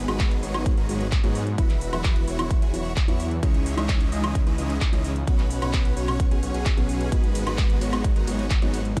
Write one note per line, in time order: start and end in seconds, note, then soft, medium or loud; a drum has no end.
0.08 0.41 G#1 loud
0.08 0.51 G#2 medium
0.08 0.52 F#3 medium
0.08 0.52 G#3 medium
0.08 0.40 G#3 loud
0.08 0.40 B3 medium
0.08 0.52 B3 medium
0.08 0.40 D#4 medium
0.08 0.52 D#4 medium
0.08 0.40 F#4 medium
0.08 0.40 B4 loud
0.08 closed hi-hat soft
0.08 high woodblock medium
0.20 kick loud
0.20 clap loud
0.20 closed hi-hat medium
0.31 closed hi-hat soft
0.43 0.75 G#1 loud
0.43 0.72 G#3 loud
0.43 0.72 B3 medium
0.43 0.72 D#4 medium
0.43 0.72 F#4 medium
0.43 0.72 C#5 loud
0.43 open hi-hat medium
0.54 0.74 G#2 medium
0.54 0.75 F#3 medium
0.54 0.75 G#3 medium
0.54 0.75 B3 medium
0.54 0.75 D#4 medium
0.54 closed hi-hat soft
0.54 high woodblock medium
0.66 kick loud
0.66 closed hi-hat medium
0.77 0.87 G#1 loud
0.77 0.87 G#3 medium
0.77 0.87 B3 medium
0.77 0.87 D#4 medium
0.77 0.87 F#4 medium
0.77 0.87 A#4 loud
0.77 closed hi-hat soft
0.88 1.21 G#1 loud
0.88 1.01 G#2 medium
0.88 1.02 F#3 medium
0.88 1.02 G#3 medium
0.88 1.07 G#3 medium
0.88 1.07 B3 medium
0.88 1.02 B3 medium
0.88 1.07 D#4 medium
0.88 1.02 D#4 medium
0.88 1.07 F#4 medium
0.88 1.07 C#5 loud
0.88 open hi-hat loud
1.01 closed hi-hat soft
1.12 kick loud
1.12 clap loud
1.12 closed hi-hat medium
1.23 1.55 G#2 loud
1.23 1.56 G#2 loud
1.23 1.55 F#3 medium
1.23 1.42 G#3 loud
1.23 1.56 G#3 medium
1.23 1.42 B3 medium
1.23 1.56 B3 medium
1.23 1.42 D#4 medium
1.23 1.56 D#4 loud
1.23 1.42 F#4 medium
1.23 1.42 C#5 loud
1.23 closed hi-hat soft
1.35 open hi-hat medium
1.47 closed hi-hat soft
1.58 1.91 E1 medium
1.58 1.71 E3 medium
1.58 1.71 F#3 medium
1.58 1.71 B3 medium
1.58 1.90 E4 medium
1.58 1.71 E4 medium
1.58 1.90 F#4 medium
1.58 1.90 B4 medium
1.58 kick loud
1.58 closed hi-hat medium
1.70 clap soft
1.70 closed hi-hat soft
1.81 open hi-hat loud
1.92 2.25 E1 loud
1.92 2.36 E3 medium
1.92 2.36 F#3 medium
1.92 2.36 B3 medium
1.92 2.25 E4 loud
1.92 2.37 E4 medium
1.92 2.25 F#4 medium
1.92 2.25 B4 loud
1.92 closed hi-hat soft
1.92 high woodblock medium
2.04 kick loud
2.04 clap loud
2.04 closed hi-hat loud
2.16 closed hi-hat soft
2.27 2.60 E1 medium
2.27 2.57 E4 loud
2.27 2.57 F#4 medium
2.27 2.57 C#5 loud
2.27 open hi-hat medium
2.38 2.59 E3 medium
2.38 2.59 F#3 medium
2.38 2.59 B3 medium
2.38 2.60 E4 medium
2.38 closed hi-hat soft
2.38 high woodblock medium
2.51 kick loud
2.51 closed hi-hat medium
2.62 2.71 E1 loud
2.62 2.71 E4 medium
2.62 2.71 F#4 medium
2.62 2.71 G#4 loud
2.62 closed hi-hat soft
2.73 3.06 E1 loud
2.73 2.86 E3 medium
2.73 2.86 F#3 medium
2.73 2.86 B3 medium
2.73 2.92 E4 medium
2.73 2.87 E4 medium
2.73 2.92 F#4 medium
2.73 2.92 C#5 loud
2.73 open hi-hat loud
2.85 closed hi-hat soft
2.96 kick loud
2.96 clap loud
2.96 closed hi-hat loud
3.08 3.41 E2 loud
3.08 3.40 E3 loud
3.08 3.40 F#3 medium
3.08 3.40 B3 medium
3.08 3.26 E4 loud
3.08 3.40 E4 loud
3.08 3.26 F#4 medium
3.08 3.26 C#5 loud
3.08 closed hi-hat soft
3.20 open hi-hat medium
3.31 closed hi-hat soft
3.42 3.75 C#2 loud
3.42 3.55 E3 medium
3.42 3.55 G#3 medium
3.42 3.75 G#3 medium
3.42 3.75 C#4 medium
3.42 3.56 C#4 medium
3.42 3.75 D#4 medium
3.42 3.56 D#4 medium
3.42 3.75 E4 medium
3.42 3.75 C#5 medium
3.42 kick loud
3.42 closed hi-hat loud
3.54 closed hi-hat soft
3.66 open hi-hat loud
3.77 4.10 C#2 loud
3.77 4.21 E3 medium
3.77 4.21 G#3 medium
3.77 4.09 G#3 medium
3.77 4.09 C#4 medium
3.77 4.21 C#4 medium
3.77 4.09 D#4 medium
3.77 4.09 E4 medium
3.77 4.09 C#5 loud
3.77 4.21 D#5 medium
3.77 closed hi-hat soft
3.77 high woodblock medium
3.89 kick loud
3.89 clap loud
3.89 closed hi-hat loud
4.01 closed hi-hat soft
4.12 4.44 C#2 medium
4.12 4.41 G#3 loud
4.12 4.41 C#4 medium
4.12 4.41 D#4 medium
4.12 4.41 E4 medium
4.12 4.41 D#5 loud
4.12 open hi-hat medium
4.23 4.44 E3 medium
4.23 4.44 G#3 medium
4.23 4.44 C#4 medium
4.23 4.44 D#4 medium
4.23 closed hi-hat soft
4.23 high woodblock medium
4.35 kick loud
4.35 closed hi-hat loud
4.47 4.56 C#2 loud
4.47 4.56 G#3 medium
4.47 4.56 C#4 medium
4.47 4.56 D#4 medium
4.47 4.56 E4 medium
4.47 4.56 B4 loud
4.47 closed hi-hat soft
4.58 4.91 C#2 loud
4.58 4.71 E3 medium
4.58 4.71 G#3 medium
4.58 4.76 G#3 medium
4.58 4.76 C#4 medium
4.58 4.71 C#4 medium
4.58 4.76 D#4 medium
4.58 4.71 D#4 medium
4.58 4.76 E4 medium
4.58 4.76 D#5 loud
4.58 open hi-hat loud
4.70 closed hi-hat soft
4.81 kick loud
4.81 clap loud
4.81 closed hi-hat loud
4.92 5.25 C#2 loud
4.92 5.24 E3 loud
4.92 5.25 G#3 medium
4.92 5.11 G#3 medium
4.92 5.11 C#4 medium
4.92 5.25 C#4 medium
4.92 5.11 D#4 medium
4.92 5.25 D#4 loud
4.92 5.11 E4 medium
4.92 5.11 D#5 loud
4.92 closed hi-hat soft
5.04 open hi-hat medium
5.16 closed hi-hat soft
5.27 5.60 B1 loud
5.27 5.40 B2 medium
5.27 5.40 F#3 medium
5.27 5.40 B3 medium
5.27 5.59 C#4 medium
5.27 5.40 C#4 medium
5.27 5.59 F#4 medium
5.27 5.40 F#4 medium
5.27 5.59 B4 medium
5.27 kick loud
5.27 closed hi-hat loud
5.39 clap soft
5.39 closed hi-hat soft
5.51 open hi-hat loud
5.61 5.94 B1 medium
5.61 6.05 B2 medium
5.61 6.05 F#3 medium
5.61 6.05 B3 medium
5.61 5.94 C#4 loud
5.61 6.06 C#4 medium
5.61 5.94 F#4 medium
5.61 6.06 F#4 medium
5.61 5.94 B4 loud
5.61 closed hi-hat soft
5.61 high woodblock medium
5.73 kick loud
5.73 clap loud
5.73 closed hi-hat loud
5.85 closed hi-hat soft
5.97 6.29 B1 medium
5.97 6.26 C#4 medium
5.97 6.26 F#4 medium
5.97 6.26 C#5 loud
5.97 open hi-hat medium
6.08 6.28 B2 medium
6.08 6.28 F#3 medium
6.08 6.29 B3 medium
6.08 6.29 C#4 medium
6.08 6.29 F#4 medium
6.08 closed hi-hat soft
6.08 high woodblock medium
6.20 kick loud
6.20 closed hi-hat loud
6.31 6.41 B1 loud
6.31 6.41 C#4 medium
6.31 6.41 F#4 medium
6.31 6.41 G#4 loud
6.31 closed hi-hat soft
6.42 6.52 B1 loud
6.42 6.55 B2 medium
6.42 6.55 F#3 medium
6.42 6.56 B3 medium
6.42 6.53 C#4 medium
6.42 6.56 C#4 medium
6.42 6.53 F#4 medium
6.42 6.56 F#4 medium
6.42 6.53 C#5 medium
6.42 open hi-hat loud
6.54 6.75 B1 medium
6.54 6.73 C#4 medium
6.54 6.73 F#4 medium
6.54 6.73 G#4 medium
6.54 closed hi-hat soft
6.66 kick loud
6.66 clap loud
6.66 closed hi-hat loud
6.77 7.10 B1 loud
6.77 7.09 B2 loud
6.77 7.09 F#3 medium
6.77 7.09 B3 medium
6.77 7.09 C#4 medium
6.77 7.09 F#4 medium
6.77 7.10 F#4 loud
6.77 7.09 G#4 medium
6.77 closed hi-hat soft
6.89 open hi-hat medium
7.01 closed hi-hat soft
7.12 7.44 G#1 loud
7.12 7.25 G#2 medium
7.12 7.25 F#3 medium
7.12 7.44 G#3 medium
7.12 7.25 G#3 medium
7.12 7.44 B3 medium
7.12 7.25 B3 medium
7.12 7.25 D#4 medium
7.12 7.44 F#4 medium
7.12 7.44 B4 medium
7.12 kick loud
7.12 closed hi-hat loud
7.12 ride medium
7.24 closed hi-hat soft
7.35 open hi-hat loud
7.35 ride medium
7.46 7.79 G#1 loud
7.46 7.90 G#2 medium
7.46 7.90 F#3 medium
7.46 7.79 G#3 loud
7.46 7.90 G#3 medium
7.46 7.79 B3 medium
7.46 7.90 B3 medium
7.46 7.79 D#4 medium
7.46 7.90 D#4 medium
7.46 7.79 F#4 medium
7.46 7.79 B4 loud
7.46 closed hi-hat soft
7.46 high woodblock medium
7.58 kick loud
7.58 clap loud
7.58 closed hi-hat loud
7.58 ride medium
7.70 closed hi-hat soft
7.81 8.14 G#1 loud
7.81 8.10 G#3 loud
7.81 8.10 B3 medium
7.81 8.10 D#4 medium
7.81 8.10 F#4 medium
7.81 8.10 C#5 loud
7.81 open hi-hat medium
7.81 ride medium
7.92 8.13 G#2 medium
7.92 8.13 F#3 medium
7.92 8.13 G#3 medium
7.92 8.13 B3 medium
7.92 8.13 D#4 medium
7.92 closed hi-hat soft
7.92 high woodblock medium
8.04 kick loud
8.04 closed hi-hat loud
8.04 ride medium
8.16 8.25 G#1 medium
8.16 8.25 G#3 medium
8.16 8.25 B3 medium
8.16 8.25 D#4 medium
8.16 8.25 F#4 medium
8.16 8.25 A#4 loud
8.16 closed hi-hat soft
8.27 8.60 G#1 loud
8.27 8.40 G#2 medium
8.27 8.40 F#3 medium
8.27 8.40 G#3 medium
8.27 8.46 G#3 medium
8.27 8.46 B3 medium
8.27 8.40 B3 medium
8.27 8.46 D#4 medium
8.27 8.40 D#4 medium
8.27 8.46 F#4 medium
8.27 8.46 C#5 loud
8.27 open hi-hat loud
8.27 ride medium
8.39 closed hi-hat soft
8.50 kick loud
8.50 clap loud
8.50 closed hi-hat loud
8.50 ride medium
8.61 8.94 G#1 medium
8.61 8.94 G#2 loud
8.61 8.94 F#3 medium
8.61 8.94 G#3 medium
8.61 8.80 G#3 loud
8.61 8.80 B3 medium
8.61 8.94 B3 medium
8.61 8.80 D#4 medium
8.61 8.94 D#4 loud
8.61 8.80 F#4 medium
8.61 8.80 C#5 loud
8.61 closed hi-hat soft
8.74 open hi-hat medium
8.74 ride medium
8.85 closed hi-hat soft
8.96 9.00 E1 loud
8.96 9.00 E3 medium
8.96 9.00 F#3 medium
8.96 9.00 E4 medium
8.96 9.00 F#4 medium
8.96 9.00 B4 medium
8.96 kick loud
8.96 closed hi-hat medium
8.96 ride medium